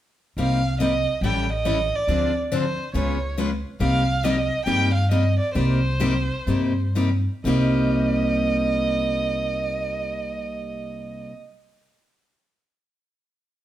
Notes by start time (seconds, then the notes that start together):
0.37 C2 C3 G3 A#3 D#4 G4 F5
0.80 C3 G3 A#3 D#4 G4 D#5
1.21 A1 E3 G3 C#4 E4 A4 G5
1.53 D#5
1.65 E3 G3 C#4 E4 A4
1.95 D5
2.08 D2 D3 F3 C4 D4 G#4
2.52 D3 F3 C4 D4 G#4 C5
2.94 C#2 C#3 G#3 B3 F4 G#4 C#5
3.38 C#3 G#3 B3 F4 G#4
3.80 C2 C3 G3 A#3 D#4 G4 F5
4.23 C3 G3 A#3 D#4 G4 D#5
4.65 G2 C3 G3 A#3 D#4 G4 G5
4.94 F5
5.11 C3 G3 A#3 D#4 G4 D#5
5.39 D5
5.54 C2 C3 G3 A#3 D#4 G4 C5
6.00 C3 G3 A#3 D#4 G4
6.47 G2 C3 G3 A#3 D#4 G4
6.95 C3 G3 A#3 D#4 G4
7.44 C2 C3 G3 A#3 D#4 G4 D#5